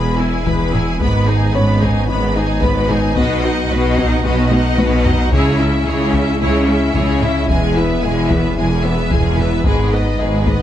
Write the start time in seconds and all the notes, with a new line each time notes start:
Already playing: E1 E2 G#3 E4 G#4 B4 B5
0.18 B3 E4 G#4 G#5
0.45 E1 E2 E3 G#4 B4 B5, taiko
0.73 B3 E4 G#4 G#5, taiko low-mid
1.00 G#1 G#2 G#3 B3 D#4 B4 B5, taiko
1.27 D#4 G#4 G#5
1.53 G#1 G#2 B3 C#4 B4 C#5 B5
1.81 G#3 D#4 G#4 G#5, taiko
2.08 G#1 G#2 B3 D#4 B4 B5
2.34 D#4 G#4 G#5
2.61 G#1 G#2 G#3 B3 B4 B5, taiko
2.89 D#4 G#4 G#5, taiko low-mid
3.15 B1 B2 B3 F#4 B4 D#5, taiko
3.43 D#4 B4 D#5 F#5
3.70 B1 B2 F#4 B4 D#5
3.96 B3 D#4 D#5 F#5, taiko
4.23 B1 B2 F#4 B4 D#5
4.50 D#4 F#4 D#5 F#5, taiko high
4.78 B1 B2 B3 F#4 B4 D#5, taiko high
5.04 D#4 F#4 D#5 F#5, taiko low
5.32 C#2 C#3 G#3 E4 G#4 C#5, taiko
5.59 C#4 E4 E5
5.87 C#2 C#3 E4 G#4 C#5
6.13 C#3 C#4 E4 E5, taiko
6.40 C#2 C#3 G#3 E4 G#4 C#5
6.68 G#3 C#4 E4 E5
6.94 C#2 C#3 E4 G#4 C#5, taiko
7.21 G#3 C#4 E4 E5, taiko low-mid
7.48 E1 E2 E3 G#3 G#4 E5 G#5, taiko
7.76 B3 E4 B4 E5
8.03 E1 E2 G#3 G#4 G#5
8.29 E3 B3 B4 E5, taiko
8.57 E1 E2 G#3 B3 G#4 G#5
8.84 B3 B4 E5
9.11 E1 E2 E3 G#3 G#4 G#5, taiko
9.38 B3 B4 E5, taiko low-mid
9.64 G#1 G#2 G#3 B3 D#4 G#4 B4, taiko
9.92 B3 G#4 B4 D#5
10.19 G#1 G#2 G#3 G#4 B4 D#5
10.46 G#3 B3 B4 D#5, taiko